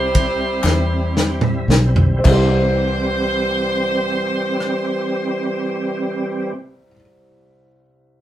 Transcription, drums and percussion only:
0, 0, Header, 1, 2, 480
1, 0, Start_track
1, 0, Key_signature, 0, "major"
1, 0, Tempo, 983607
1, 563, Tempo, 1102941
1, 1043, Time_signature, 6, 3, 24, 8
1, 1043, Tempo, 1169591
1, 3487, End_track
2, 0, Start_track
2, 0, Title_t, "Drums"
2, 71, Note_on_c, 9, 51, 67
2, 74, Note_on_c, 9, 36, 88
2, 120, Note_off_c, 9, 51, 0
2, 123, Note_off_c, 9, 36, 0
2, 311, Note_on_c, 9, 39, 100
2, 322, Note_on_c, 9, 38, 61
2, 360, Note_off_c, 9, 39, 0
2, 370, Note_off_c, 9, 38, 0
2, 569, Note_on_c, 9, 38, 83
2, 613, Note_off_c, 9, 38, 0
2, 676, Note_on_c, 9, 45, 86
2, 719, Note_off_c, 9, 45, 0
2, 802, Note_on_c, 9, 38, 99
2, 845, Note_off_c, 9, 38, 0
2, 914, Note_on_c, 9, 43, 91
2, 957, Note_off_c, 9, 43, 0
2, 1038, Note_on_c, 9, 49, 83
2, 1040, Note_on_c, 9, 39, 84
2, 1042, Note_on_c, 9, 36, 104
2, 1079, Note_off_c, 9, 49, 0
2, 1081, Note_off_c, 9, 39, 0
2, 1083, Note_off_c, 9, 36, 0
2, 2007, Note_on_c, 9, 37, 58
2, 2048, Note_off_c, 9, 37, 0
2, 3487, End_track
0, 0, End_of_file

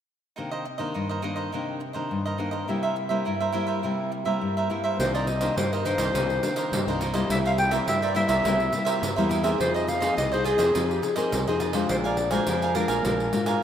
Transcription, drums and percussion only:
0, 0, Header, 1, 2, 480
1, 0, Start_track
1, 0, Key_signature, -3, "minor"
1, 0, Tempo, 576369
1, 311, Time_signature, 4, 2, 24, 8
1, 11352, End_track
2, 0, Start_track
2, 0, Title_t, "Pandeiro"
2, 4161, Note_on_c, 9, 54, 74
2, 4245, Note_off_c, 9, 54, 0
2, 4287, Note_on_c, 9, 54, 32
2, 4370, Note_off_c, 9, 54, 0
2, 4391, Note_on_c, 9, 54, 55
2, 4474, Note_off_c, 9, 54, 0
2, 4504, Note_on_c, 9, 54, 64
2, 4587, Note_off_c, 9, 54, 0
2, 4643, Note_on_c, 9, 54, 78
2, 4726, Note_off_c, 9, 54, 0
2, 4770, Note_on_c, 9, 54, 34
2, 4853, Note_off_c, 9, 54, 0
2, 4877, Note_on_c, 9, 54, 53
2, 4960, Note_off_c, 9, 54, 0
2, 4982, Note_on_c, 9, 54, 71
2, 5065, Note_off_c, 9, 54, 0
2, 5122, Note_on_c, 9, 54, 76
2, 5205, Note_off_c, 9, 54, 0
2, 5246, Note_on_c, 9, 54, 29
2, 5330, Note_off_c, 9, 54, 0
2, 5355, Note_on_c, 9, 54, 59
2, 5438, Note_off_c, 9, 54, 0
2, 5464, Note_on_c, 9, 54, 63
2, 5547, Note_off_c, 9, 54, 0
2, 5604, Note_on_c, 9, 54, 79
2, 5688, Note_off_c, 9, 54, 0
2, 5731, Note_on_c, 9, 54, 31
2, 5815, Note_off_c, 9, 54, 0
2, 5836, Note_on_c, 9, 54, 53
2, 5919, Note_off_c, 9, 54, 0
2, 5943, Note_on_c, 9, 54, 58
2, 6026, Note_off_c, 9, 54, 0
2, 6081, Note_on_c, 9, 54, 80
2, 6164, Note_off_c, 9, 54, 0
2, 6208, Note_on_c, 9, 54, 30
2, 6292, Note_off_c, 9, 54, 0
2, 6314, Note_on_c, 9, 54, 58
2, 6398, Note_off_c, 9, 54, 0
2, 6424, Note_on_c, 9, 54, 62
2, 6507, Note_off_c, 9, 54, 0
2, 6560, Note_on_c, 9, 54, 77
2, 6643, Note_off_c, 9, 54, 0
2, 6684, Note_on_c, 9, 54, 34
2, 6767, Note_off_c, 9, 54, 0
2, 6796, Note_on_c, 9, 54, 53
2, 6879, Note_off_c, 9, 54, 0
2, 6903, Note_on_c, 9, 54, 66
2, 6986, Note_off_c, 9, 54, 0
2, 7038, Note_on_c, 9, 54, 78
2, 7121, Note_off_c, 9, 54, 0
2, 7161, Note_on_c, 9, 54, 31
2, 7245, Note_off_c, 9, 54, 0
2, 7267, Note_on_c, 9, 54, 57
2, 7350, Note_off_c, 9, 54, 0
2, 7383, Note_on_c, 9, 54, 67
2, 7466, Note_off_c, 9, 54, 0
2, 7520, Note_on_c, 9, 54, 77
2, 7603, Note_off_c, 9, 54, 0
2, 7646, Note_on_c, 9, 54, 31
2, 7729, Note_off_c, 9, 54, 0
2, 7751, Note_on_c, 9, 54, 54
2, 7835, Note_off_c, 9, 54, 0
2, 7862, Note_on_c, 9, 54, 59
2, 7946, Note_off_c, 9, 54, 0
2, 7999, Note_on_c, 9, 54, 70
2, 8083, Note_off_c, 9, 54, 0
2, 8128, Note_on_c, 9, 54, 30
2, 8211, Note_off_c, 9, 54, 0
2, 8231, Note_on_c, 9, 54, 55
2, 8315, Note_off_c, 9, 54, 0
2, 8345, Note_on_c, 9, 54, 62
2, 8429, Note_off_c, 9, 54, 0
2, 8479, Note_on_c, 9, 54, 73
2, 8562, Note_off_c, 9, 54, 0
2, 8607, Note_on_c, 9, 54, 35
2, 8690, Note_off_c, 9, 54, 0
2, 8706, Note_on_c, 9, 54, 54
2, 8790, Note_off_c, 9, 54, 0
2, 8817, Note_on_c, 9, 54, 68
2, 8901, Note_off_c, 9, 54, 0
2, 8953, Note_on_c, 9, 54, 72
2, 9036, Note_off_c, 9, 54, 0
2, 9085, Note_on_c, 9, 54, 30
2, 9168, Note_off_c, 9, 54, 0
2, 9187, Note_on_c, 9, 54, 56
2, 9270, Note_off_c, 9, 54, 0
2, 9293, Note_on_c, 9, 54, 65
2, 9376, Note_off_c, 9, 54, 0
2, 9430, Note_on_c, 9, 54, 77
2, 9514, Note_off_c, 9, 54, 0
2, 9556, Note_on_c, 9, 54, 30
2, 9639, Note_off_c, 9, 54, 0
2, 9660, Note_on_c, 9, 54, 57
2, 9743, Note_off_c, 9, 54, 0
2, 9770, Note_on_c, 9, 54, 63
2, 9853, Note_off_c, 9, 54, 0
2, 9904, Note_on_c, 9, 54, 76
2, 9988, Note_off_c, 9, 54, 0
2, 10034, Note_on_c, 9, 54, 31
2, 10117, Note_off_c, 9, 54, 0
2, 10135, Note_on_c, 9, 54, 53
2, 10219, Note_off_c, 9, 54, 0
2, 10249, Note_on_c, 9, 54, 66
2, 10332, Note_off_c, 9, 54, 0
2, 10382, Note_on_c, 9, 54, 73
2, 10465, Note_off_c, 9, 54, 0
2, 10510, Note_on_c, 9, 54, 33
2, 10593, Note_off_c, 9, 54, 0
2, 10616, Note_on_c, 9, 54, 57
2, 10700, Note_off_c, 9, 54, 0
2, 10729, Note_on_c, 9, 54, 63
2, 10812, Note_off_c, 9, 54, 0
2, 10866, Note_on_c, 9, 54, 71
2, 10949, Note_off_c, 9, 54, 0
2, 10994, Note_on_c, 9, 54, 32
2, 11078, Note_off_c, 9, 54, 0
2, 11099, Note_on_c, 9, 54, 57
2, 11182, Note_off_c, 9, 54, 0
2, 11211, Note_on_c, 9, 54, 62
2, 11294, Note_off_c, 9, 54, 0
2, 11352, End_track
0, 0, End_of_file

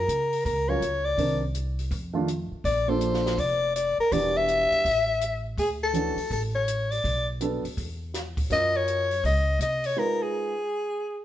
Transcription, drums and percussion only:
0, 0, Header, 1, 2, 480
1, 0, Start_track
1, 0, Tempo, 366077
1, 1554, Time_signature, 4, 2, 24, 8
1, 14750, End_track
2, 0, Start_track
2, 0, Title_t, "Drums"
2, 118, Note_on_c, 9, 42, 38
2, 249, Note_off_c, 9, 42, 0
2, 428, Note_on_c, 9, 46, 27
2, 559, Note_off_c, 9, 46, 0
2, 593, Note_on_c, 9, 36, 26
2, 600, Note_on_c, 9, 46, 32
2, 724, Note_off_c, 9, 36, 0
2, 731, Note_off_c, 9, 46, 0
2, 1077, Note_on_c, 9, 42, 38
2, 1208, Note_off_c, 9, 42, 0
2, 1546, Note_on_c, 9, 36, 27
2, 1552, Note_on_c, 9, 46, 34
2, 1677, Note_off_c, 9, 36, 0
2, 1683, Note_off_c, 9, 46, 0
2, 2027, Note_on_c, 9, 42, 38
2, 2158, Note_off_c, 9, 42, 0
2, 2343, Note_on_c, 9, 46, 27
2, 2474, Note_off_c, 9, 46, 0
2, 2503, Note_on_c, 9, 36, 25
2, 2507, Note_on_c, 9, 46, 33
2, 2634, Note_off_c, 9, 36, 0
2, 2638, Note_off_c, 9, 46, 0
2, 2992, Note_on_c, 9, 42, 42
2, 3123, Note_off_c, 9, 42, 0
2, 3464, Note_on_c, 9, 36, 28
2, 3473, Note_on_c, 9, 46, 33
2, 3596, Note_off_c, 9, 36, 0
2, 3604, Note_off_c, 9, 46, 0
2, 3944, Note_on_c, 9, 42, 36
2, 4075, Note_off_c, 9, 42, 0
2, 4113, Note_on_c, 9, 38, 23
2, 4244, Note_off_c, 9, 38, 0
2, 4275, Note_on_c, 9, 38, 32
2, 4406, Note_off_c, 9, 38, 0
2, 4431, Note_on_c, 9, 36, 27
2, 4435, Note_on_c, 9, 46, 33
2, 4562, Note_off_c, 9, 36, 0
2, 4566, Note_off_c, 9, 46, 0
2, 4926, Note_on_c, 9, 42, 42
2, 5057, Note_off_c, 9, 42, 0
2, 5397, Note_on_c, 9, 36, 29
2, 5401, Note_on_c, 9, 46, 35
2, 5528, Note_off_c, 9, 36, 0
2, 5532, Note_off_c, 9, 46, 0
2, 5879, Note_on_c, 9, 42, 37
2, 6010, Note_off_c, 9, 42, 0
2, 6188, Note_on_c, 9, 46, 28
2, 6319, Note_off_c, 9, 46, 0
2, 6358, Note_on_c, 9, 36, 28
2, 6365, Note_on_c, 9, 46, 33
2, 6490, Note_off_c, 9, 36, 0
2, 6496, Note_off_c, 9, 46, 0
2, 6836, Note_on_c, 9, 42, 42
2, 6967, Note_off_c, 9, 42, 0
2, 7311, Note_on_c, 9, 36, 28
2, 7317, Note_on_c, 9, 46, 33
2, 7442, Note_off_c, 9, 36, 0
2, 7448, Note_off_c, 9, 46, 0
2, 7791, Note_on_c, 9, 42, 37
2, 7922, Note_off_c, 9, 42, 0
2, 8098, Note_on_c, 9, 46, 29
2, 8229, Note_off_c, 9, 46, 0
2, 8266, Note_on_c, 9, 36, 25
2, 8273, Note_on_c, 9, 46, 33
2, 8397, Note_off_c, 9, 36, 0
2, 8404, Note_off_c, 9, 46, 0
2, 8756, Note_on_c, 9, 42, 41
2, 8887, Note_off_c, 9, 42, 0
2, 9069, Note_on_c, 9, 46, 27
2, 9200, Note_off_c, 9, 46, 0
2, 9233, Note_on_c, 9, 36, 28
2, 9243, Note_on_c, 9, 46, 36
2, 9364, Note_off_c, 9, 36, 0
2, 9374, Note_off_c, 9, 46, 0
2, 9712, Note_on_c, 9, 42, 38
2, 9843, Note_off_c, 9, 42, 0
2, 10027, Note_on_c, 9, 46, 29
2, 10158, Note_off_c, 9, 46, 0
2, 10193, Note_on_c, 9, 36, 26
2, 10196, Note_on_c, 9, 46, 34
2, 10324, Note_off_c, 9, 36, 0
2, 10327, Note_off_c, 9, 46, 0
2, 10674, Note_on_c, 9, 38, 29
2, 10677, Note_on_c, 9, 42, 40
2, 10805, Note_off_c, 9, 38, 0
2, 10808, Note_off_c, 9, 42, 0
2, 10978, Note_on_c, 9, 36, 40
2, 10980, Note_on_c, 9, 46, 30
2, 11109, Note_off_c, 9, 36, 0
2, 11111, Note_off_c, 9, 46, 0
2, 11150, Note_on_c, 9, 46, 39
2, 11151, Note_on_c, 9, 36, 27
2, 11281, Note_off_c, 9, 46, 0
2, 11282, Note_off_c, 9, 36, 0
2, 11638, Note_on_c, 9, 42, 35
2, 11769, Note_off_c, 9, 42, 0
2, 11945, Note_on_c, 9, 46, 30
2, 12076, Note_off_c, 9, 46, 0
2, 12113, Note_on_c, 9, 36, 28
2, 12125, Note_on_c, 9, 46, 33
2, 12244, Note_off_c, 9, 36, 0
2, 12257, Note_off_c, 9, 46, 0
2, 12595, Note_on_c, 9, 42, 42
2, 12726, Note_off_c, 9, 42, 0
2, 12898, Note_on_c, 9, 46, 31
2, 13030, Note_off_c, 9, 46, 0
2, 14750, End_track
0, 0, End_of_file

